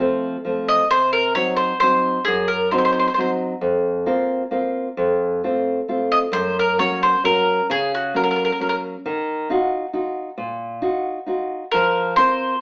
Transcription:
0.00 nylon-string guitar F3 A3 C4
0.45 nylon-string guitar F3 A3 C4
0.68 mandolin D#5
0.91 nylon-string guitar C3, mandolin C5
1.13 mandolin A#4
1.35 nylon-string guitar F#3 C4 D#4, mandolin C#5
1.56 mandolin C5
1.80 nylon-string guitar F#3 C4 D#4, mandolin C5
2.25 nylon-string guitar F#2, mandolin G#4
2.48 mandolin A#4
2.71 nylon-string guitar F#3 C4 D#4, mandolin C5
2.78 mandolin C5
2.85 mandolin C5
2.93 mandolin C5
2.99 mandolin C5
3.08 mandolin C5
3.14 nylon-string guitar F#3 C4, mandolin C5
3.18 nylon-string guitar D#4, mandolin C5
3.61 nylon-string guitar F2
4.06 nylon-string guitar A#3 C4 F4
4.51 nylon-string guitar A#3 C4 F4
4.97 nylon-string guitar F2
5.44 nylon-string guitar A3 C4 F4
5.88 nylon-string guitar A3 C4 F4
6.12 mandolin D#5
6.32 nylon-string guitar F#2, mandolin C5
6.59 mandolin A#4
6.78 nylon-string guitar F#3 A#3 C#4, mandolin C#5
7.03 mandolin C5
7.24 nylon-string guitar F#3 A#3 C#4, mandolin A#4
7.70 nylon-string guitar C#3, mandolin G#4
7.94 mandolin F#4
8.14 nylon-string guitar F#3 A#3 C#4, mandolin A#4
8.24 mandolin A#4
8.31 mandolin A#4
8.36 mandolin A#4
8.45 mandolin A#4
8.52 mandolin A#4
8.60 nylon-string guitar F#3 A#3 C#4, mandolin A#4
8.69 mandolin A#4
9.06 nylon-string guitar D#3
9.50 nylon-string guitar D#4 F4 F#4
9.93 nylon-string guitar D#4 F4 F#4
10.38 nylon-string guitar A#2
10.82 nylon-string guitar D#4 F4 F#4
11.26 nylon-string guitar D#4 F4 F#4
11.71 nylon-string guitar F3, mandolin A#4
12.16 nylon-string guitar C4 F4 A#4, mandolin C5

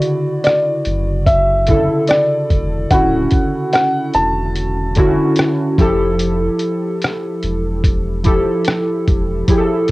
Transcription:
Already playing: synth keys C#3 D3 E4 F#4, felt piano D5
0.02 closed hi-hat
0.44 felt piano D5, cross-stick, closed hi-hat
0.85 sub bass F#1, closed hi-hat
1.26 felt piano E5, kick, closed hi-hat
1.67 synth keys C#3 D3 E4 A4, kick, closed hi-hat
2.07 felt piano D5, cross-stick, closed hi-hat
2.50 sub bass E1, kick, closed hi-hat
2.91 sub bass D1, synth keys D3 C#4 E4 F#4, felt piano F#5, kick, closed hi-hat
3.31 kick, closed hi-hat
3.73 felt piano F#5, cross-stick, closed hi-hat
4.14 sub bass E1, felt piano A5, closed hi-hat
4.56 closed hi-hat
4.95 synth keys D3 C#4 E4 F#4, kick, closed hi-hat
5.36 cross-stick, closed hi-hat
5.78 sub bass F1, synth keys F3 E4 G4 A4, kick, closed hi-hat
6.19 closed hi-hat
6.59 closed hi-hat
7.02 cross-stick, closed hi-hat
7.43 sub bass E1, closed hi-hat
7.84 kick, closed hi-hat
8.23 synth keys F3 E4 G4 A4, kick, closed hi-hat
8.65 cross-stick, closed hi-hat
9.08 sub bass E1, kick, closed hi-hat
9.48 synth keys F3 E4 G4 G#4, kick, closed hi-hat
9.57 synth keys A4
9.88 closed hi-hat

